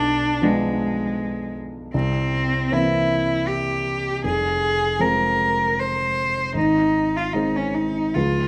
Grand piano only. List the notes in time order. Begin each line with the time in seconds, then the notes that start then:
Already playing: B1
0.42 F3 B3 D4
1.94 C2
2.71 E3 A#3 C4
4.24 F1
4.99 F3 G#3 C4
6.54 G#1
7.34 D#3 G#3 C4
8.15 C#2 F3 G#3 F4